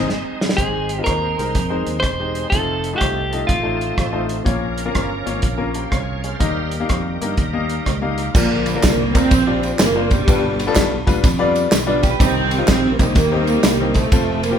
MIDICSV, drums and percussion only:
0, 0, Header, 1, 2, 480
1, 0, Start_track
1, 0, Key_signature, -4, "major"
1, 0, Tempo, 485044
1, 577, Time_signature, 4, 2, 24, 8
1, 7779, Tempo, 481155
1, 8262, Key_signature, -2, "major"
1, 14490, End_track
2, 0, Start_track
2, 0, Title_t, "Drums"
2, 94, Note_on_c, 9, 38, 64
2, 192, Note_off_c, 9, 38, 0
2, 410, Note_on_c, 9, 38, 89
2, 488, Note_off_c, 9, 38, 0
2, 488, Note_on_c, 9, 38, 95
2, 576, Note_on_c, 9, 36, 91
2, 576, Note_on_c, 9, 42, 80
2, 587, Note_off_c, 9, 38, 0
2, 675, Note_off_c, 9, 36, 0
2, 675, Note_off_c, 9, 42, 0
2, 883, Note_on_c, 9, 42, 71
2, 982, Note_off_c, 9, 42, 0
2, 1049, Note_on_c, 9, 42, 80
2, 1053, Note_on_c, 9, 37, 96
2, 1061, Note_on_c, 9, 36, 79
2, 1148, Note_off_c, 9, 42, 0
2, 1152, Note_off_c, 9, 37, 0
2, 1160, Note_off_c, 9, 36, 0
2, 1379, Note_on_c, 9, 42, 59
2, 1477, Note_off_c, 9, 42, 0
2, 1532, Note_on_c, 9, 42, 79
2, 1535, Note_on_c, 9, 37, 31
2, 1536, Note_on_c, 9, 36, 98
2, 1631, Note_off_c, 9, 42, 0
2, 1634, Note_off_c, 9, 37, 0
2, 1635, Note_off_c, 9, 36, 0
2, 1847, Note_on_c, 9, 42, 57
2, 1946, Note_off_c, 9, 42, 0
2, 2005, Note_on_c, 9, 37, 94
2, 2014, Note_on_c, 9, 36, 80
2, 2014, Note_on_c, 9, 42, 66
2, 2104, Note_off_c, 9, 37, 0
2, 2113, Note_off_c, 9, 36, 0
2, 2113, Note_off_c, 9, 42, 0
2, 2327, Note_on_c, 9, 42, 61
2, 2328, Note_on_c, 9, 37, 26
2, 2426, Note_off_c, 9, 42, 0
2, 2427, Note_off_c, 9, 37, 0
2, 2496, Note_on_c, 9, 36, 96
2, 2498, Note_on_c, 9, 42, 80
2, 2595, Note_off_c, 9, 36, 0
2, 2597, Note_off_c, 9, 42, 0
2, 2809, Note_on_c, 9, 42, 69
2, 2908, Note_off_c, 9, 42, 0
2, 2976, Note_on_c, 9, 42, 80
2, 2981, Note_on_c, 9, 36, 79
2, 2981, Note_on_c, 9, 37, 92
2, 3075, Note_off_c, 9, 42, 0
2, 3080, Note_off_c, 9, 36, 0
2, 3080, Note_off_c, 9, 37, 0
2, 3292, Note_on_c, 9, 42, 58
2, 3391, Note_off_c, 9, 42, 0
2, 3452, Note_on_c, 9, 42, 82
2, 3454, Note_on_c, 9, 36, 98
2, 3455, Note_on_c, 9, 37, 31
2, 3551, Note_off_c, 9, 42, 0
2, 3553, Note_off_c, 9, 36, 0
2, 3554, Note_off_c, 9, 37, 0
2, 3772, Note_on_c, 9, 42, 59
2, 3871, Note_off_c, 9, 42, 0
2, 3936, Note_on_c, 9, 36, 81
2, 3937, Note_on_c, 9, 37, 98
2, 3946, Note_on_c, 9, 42, 64
2, 4035, Note_off_c, 9, 36, 0
2, 4036, Note_off_c, 9, 37, 0
2, 4044, Note_off_c, 9, 42, 0
2, 4249, Note_on_c, 9, 42, 57
2, 4250, Note_on_c, 9, 37, 26
2, 4348, Note_off_c, 9, 42, 0
2, 4349, Note_off_c, 9, 37, 0
2, 4415, Note_on_c, 9, 36, 97
2, 4416, Note_on_c, 9, 42, 82
2, 4513, Note_off_c, 9, 36, 0
2, 4515, Note_off_c, 9, 42, 0
2, 4726, Note_on_c, 9, 42, 67
2, 4825, Note_off_c, 9, 42, 0
2, 4897, Note_on_c, 9, 42, 78
2, 4901, Note_on_c, 9, 37, 101
2, 4902, Note_on_c, 9, 36, 81
2, 4996, Note_off_c, 9, 42, 0
2, 5000, Note_off_c, 9, 37, 0
2, 5001, Note_off_c, 9, 36, 0
2, 5213, Note_on_c, 9, 42, 61
2, 5312, Note_off_c, 9, 42, 0
2, 5365, Note_on_c, 9, 42, 84
2, 5373, Note_on_c, 9, 36, 99
2, 5464, Note_off_c, 9, 42, 0
2, 5472, Note_off_c, 9, 36, 0
2, 5684, Note_on_c, 9, 42, 60
2, 5783, Note_off_c, 9, 42, 0
2, 5856, Note_on_c, 9, 37, 98
2, 5858, Note_on_c, 9, 36, 80
2, 5865, Note_on_c, 9, 42, 65
2, 5955, Note_off_c, 9, 37, 0
2, 5957, Note_off_c, 9, 36, 0
2, 5964, Note_off_c, 9, 42, 0
2, 6173, Note_on_c, 9, 42, 61
2, 6174, Note_on_c, 9, 37, 25
2, 6272, Note_off_c, 9, 42, 0
2, 6273, Note_off_c, 9, 37, 0
2, 6337, Note_on_c, 9, 42, 83
2, 6338, Note_on_c, 9, 36, 96
2, 6436, Note_off_c, 9, 42, 0
2, 6437, Note_off_c, 9, 36, 0
2, 6645, Note_on_c, 9, 42, 67
2, 6744, Note_off_c, 9, 42, 0
2, 6820, Note_on_c, 9, 42, 84
2, 6825, Note_on_c, 9, 37, 96
2, 6826, Note_on_c, 9, 36, 82
2, 6919, Note_off_c, 9, 42, 0
2, 6924, Note_off_c, 9, 37, 0
2, 6925, Note_off_c, 9, 36, 0
2, 7141, Note_on_c, 9, 42, 63
2, 7240, Note_off_c, 9, 42, 0
2, 7297, Note_on_c, 9, 42, 78
2, 7300, Note_on_c, 9, 36, 98
2, 7300, Note_on_c, 9, 37, 31
2, 7396, Note_off_c, 9, 42, 0
2, 7399, Note_off_c, 9, 36, 0
2, 7399, Note_off_c, 9, 37, 0
2, 7615, Note_on_c, 9, 42, 55
2, 7714, Note_off_c, 9, 42, 0
2, 7781, Note_on_c, 9, 37, 96
2, 7783, Note_on_c, 9, 36, 77
2, 7790, Note_on_c, 9, 42, 67
2, 7881, Note_off_c, 9, 37, 0
2, 7883, Note_off_c, 9, 36, 0
2, 7890, Note_off_c, 9, 42, 0
2, 8095, Note_on_c, 9, 42, 61
2, 8096, Note_on_c, 9, 37, 26
2, 8195, Note_off_c, 9, 42, 0
2, 8196, Note_off_c, 9, 37, 0
2, 8262, Note_on_c, 9, 49, 102
2, 8265, Note_on_c, 9, 36, 120
2, 8275, Note_on_c, 9, 54, 87
2, 8362, Note_off_c, 9, 49, 0
2, 8365, Note_off_c, 9, 36, 0
2, 8375, Note_off_c, 9, 54, 0
2, 8575, Note_on_c, 9, 51, 71
2, 8585, Note_on_c, 9, 54, 48
2, 8675, Note_off_c, 9, 51, 0
2, 8685, Note_off_c, 9, 54, 0
2, 8746, Note_on_c, 9, 51, 82
2, 8747, Note_on_c, 9, 39, 99
2, 8747, Note_on_c, 9, 54, 103
2, 8751, Note_on_c, 9, 38, 121
2, 8754, Note_on_c, 9, 36, 106
2, 8846, Note_off_c, 9, 39, 0
2, 8846, Note_off_c, 9, 51, 0
2, 8846, Note_off_c, 9, 54, 0
2, 8851, Note_off_c, 9, 38, 0
2, 8854, Note_off_c, 9, 36, 0
2, 9065, Note_on_c, 9, 36, 103
2, 9067, Note_on_c, 9, 51, 61
2, 9074, Note_on_c, 9, 39, 83
2, 9074, Note_on_c, 9, 54, 57
2, 9165, Note_off_c, 9, 36, 0
2, 9166, Note_off_c, 9, 51, 0
2, 9174, Note_off_c, 9, 39, 0
2, 9174, Note_off_c, 9, 54, 0
2, 9224, Note_on_c, 9, 51, 81
2, 9229, Note_on_c, 9, 36, 124
2, 9232, Note_on_c, 9, 54, 77
2, 9324, Note_off_c, 9, 51, 0
2, 9329, Note_off_c, 9, 36, 0
2, 9332, Note_off_c, 9, 54, 0
2, 9546, Note_on_c, 9, 51, 56
2, 9546, Note_on_c, 9, 54, 53
2, 9645, Note_off_c, 9, 54, 0
2, 9646, Note_off_c, 9, 51, 0
2, 9705, Note_on_c, 9, 39, 116
2, 9705, Note_on_c, 9, 54, 112
2, 9708, Note_on_c, 9, 38, 123
2, 9717, Note_on_c, 9, 51, 65
2, 9805, Note_off_c, 9, 39, 0
2, 9805, Note_off_c, 9, 54, 0
2, 9808, Note_off_c, 9, 38, 0
2, 9817, Note_off_c, 9, 51, 0
2, 10019, Note_on_c, 9, 51, 62
2, 10025, Note_on_c, 9, 36, 103
2, 10030, Note_on_c, 9, 54, 58
2, 10119, Note_off_c, 9, 51, 0
2, 10125, Note_off_c, 9, 36, 0
2, 10130, Note_off_c, 9, 54, 0
2, 10190, Note_on_c, 9, 36, 127
2, 10191, Note_on_c, 9, 51, 80
2, 10198, Note_on_c, 9, 54, 87
2, 10290, Note_off_c, 9, 36, 0
2, 10291, Note_off_c, 9, 51, 0
2, 10297, Note_off_c, 9, 54, 0
2, 10506, Note_on_c, 9, 51, 73
2, 10516, Note_on_c, 9, 54, 49
2, 10606, Note_off_c, 9, 51, 0
2, 10616, Note_off_c, 9, 54, 0
2, 10666, Note_on_c, 9, 39, 98
2, 10666, Note_on_c, 9, 54, 102
2, 10668, Note_on_c, 9, 51, 85
2, 10672, Note_on_c, 9, 38, 114
2, 10675, Note_on_c, 9, 36, 100
2, 10765, Note_off_c, 9, 39, 0
2, 10765, Note_off_c, 9, 54, 0
2, 10767, Note_off_c, 9, 51, 0
2, 10772, Note_off_c, 9, 38, 0
2, 10775, Note_off_c, 9, 36, 0
2, 10985, Note_on_c, 9, 36, 105
2, 10988, Note_on_c, 9, 51, 58
2, 11000, Note_on_c, 9, 54, 55
2, 11084, Note_off_c, 9, 36, 0
2, 11087, Note_off_c, 9, 51, 0
2, 11099, Note_off_c, 9, 54, 0
2, 11147, Note_on_c, 9, 51, 84
2, 11148, Note_on_c, 9, 36, 127
2, 11150, Note_on_c, 9, 38, 38
2, 11155, Note_on_c, 9, 54, 76
2, 11247, Note_off_c, 9, 51, 0
2, 11248, Note_off_c, 9, 36, 0
2, 11250, Note_off_c, 9, 38, 0
2, 11254, Note_off_c, 9, 54, 0
2, 11465, Note_on_c, 9, 54, 56
2, 11468, Note_on_c, 9, 51, 57
2, 11565, Note_off_c, 9, 54, 0
2, 11567, Note_off_c, 9, 51, 0
2, 11626, Note_on_c, 9, 38, 118
2, 11628, Note_on_c, 9, 39, 111
2, 11628, Note_on_c, 9, 54, 112
2, 11635, Note_on_c, 9, 51, 67
2, 11725, Note_off_c, 9, 38, 0
2, 11728, Note_off_c, 9, 39, 0
2, 11728, Note_off_c, 9, 54, 0
2, 11734, Note_off_c, 9, 51, 0
2, 11939, Note_on_c, 9, 51, 61
2, 11940, Note_on_c, 9, 38, 33
2, 11940, Note_on_c, 9, 54, 57
2, 11944, Note_on_c, 9, 36, 103
2, 12039, Note_off_c, 9, 51, 0
2, 12040, Note_off_c, 9, 38, 0
2, 12040, Note_off_c, 9, 54, 0
2, 12043, Note_off_c, 9, 36, 0
2, 12109, Note_on_c, 9, 36, 122
2, 12113, Note_on_c, 9, 51, 85
2, 12115, Note_on_c, 9, 54, 87
2, 12208, Note_off_c, 9, 36, 0
2, 12212, Note_off_c, 9, 51, 0
2, 12215, Note_off_c, 9, 54, 0
2, 12418, Note_on_c, 9, 51, 72
2, 12421, Note_on_c, 9, 54, 50
2, 12517, Note_off_c, 9, 51, 0
2, 12521, Note_off_c, 9, 54, 0
2, 12582, Note_on_c, 9, 51, 78
2, 12584, Note_on_c, 9, 39, 98
2, 12584, Note_on_c, 9, 54, 98
2, 12587, Note_on_c, 9, 38, 124
2, 12592, Note_on_c, 9, 36, 105
2, 12682, Note_off_c, 9, 51, 0
2, 12684, Note_off_c, 9, 39, 0
2, 12684, Note_off_c, 9, 54, 0
2, 12687, Note_off_c, 9, 38, 0
2, 12692, Note_off_c, 9, 36, 0
2, 12899, Note_on_c, 9, 51, 62
2, 12900, Note_on_c, 9, 36, 101
2, 12907, Note_on_c, 9, 39, 77
2, 12907, Note_on_c, 9, 54, 61
2, 12999, Note_off_c, 9, 51, 0
2, 13000, Note_off_c, 9, 36, 0
2, 13007, Note_off_c, 9, 39, 0
2, 13007, Note_off_c, 9, 54, 0
2, 13059, Note_on_c, 9, 51, 83
2, 13062, Note_on_c, 9, 38, 35
2, 13064, Note_on_c, 9, 36, 123
2, 13070, Note_on_c, 9, 54, 79
2, 13159, Note_off_c, 9, 51, 0
2, 13162, Note_off_c, 9, 38, 0
2, 13164, Note_off_c, 9, 36, 0
2, 13169, Note_off_c, 9, 54, 0
2, 13377, Note_on_c, 9, 51, 60
2, 13383, Note_on_c, 9, 54, 56
2, 13477, Note_off_c, 9, 51, 0
2, 13483, Note_off_c, 9, 54, 0
2, 13539, Note_on_c, 9, 38, 126
2, 13544, Note_on_c, 9, 39, 109
2, 13544, Note_on_c, 9, 54, 108
2, 13548, Note_on_c, 9, 51, 69
2, 13639, Note_off_c, 9, 38, 0
2, 13644, Note_off_c, 9, 39, 0
2, 13644, Note_off_c, 9, 54, 0
2, 13648, Note_off_c, 9, 51, 0
2, 13846, Note_on_c, 9, 51, 61
2, 13847, Note_on_c, 9, 38, 33
2, 13858, Note_on_c, 9, 36, 98
2, 13861, Note_on_c, 9, 54, 54
2, 13946, Note_off_c, 9, 51, 0
2, 13947, Note_off_c, 9, 38, 0
2, 13958, Note_off_c, 9, 36, 0
2, 13961, Note_off_c, 9, 54, 0
2, 14021, Note_on_c, 9, 51, 83
2, 14024, Note_on_c, 9, 36, 124
2, 14024, Note_on_c, 9, 54, 88
2, 14121, Note_off_c, 9, 51, 0
2, 14123, Note_off_c, 9, 36, 0
2, 14124, Note_off_c, 9, 54, 0
2, 14336, Note_on_c, 9, 54, 50
2, 14337, Note_on_c, 9, 51, 72
2, 14436, Note_off_c, 9, 54, 0
2, 14437, Note_off_c, 9, 51, 0
2, 14490, End_track
0, 0, End_of_file